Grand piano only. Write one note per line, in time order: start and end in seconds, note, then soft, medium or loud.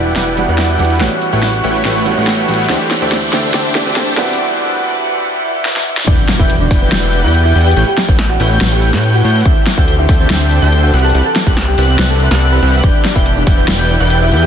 0.00 0.34 E3 medium
0.00 0.34 G3 medium
0.00 0.35 B3 medium
0.00 0.35 D4 medium
0.00 0.36 F#4 medium
0.36 0.76 E3 medium
0.36 0.77 G3 medium
0.36 0.77 B3 medium
0.36 0.77 D4 medium
0.36 0.77 F#4 medium
0.78 0.97 E3 medium
0.78 0.98 G3 medium
0.78 0.98 B3 medium
0.78 0.98 D4 medium
0.78 0.98 F#4 loud
0.98 2.03 E3 medium
0.98 2.03 G3 medium
0.98 2.04 B3 medium
0.98 2.04 C#4 medium
0.98 2.05 F#4 medium
2.05 2.45 E3 medium
2.05 2.46 G3 medium
2.05 2.46 B3 medium
2.05 2.46 C#4 medium
2.05 2.46 F#4 medium
2.48 2.66 E3 medium
2.48 2.67 G3 medium
2.48 2.67 B3 medium
2.48 2.67 C#4 medium
2.48 2.68 F#4 loud
2.68 3.72 E3 medium
2.68 3.72 A3 medium
2.68 3.73 C4 medium
2.68 3.73 D4 medium
2.72 3.74 G4 loud
3.74 4.14 E3 medium
3.74 4.15 A3 medium
3.74 4.15 C4 medium
3.74 4.15 D4 medium
3.74 4.15 G4 medium
4.16 4.36 E3 medium
4.16 4.36 G3 medium
4.16 4.36 B3 medium
4.16 4.36 D4 medium
4.16 4.37 F#4 loud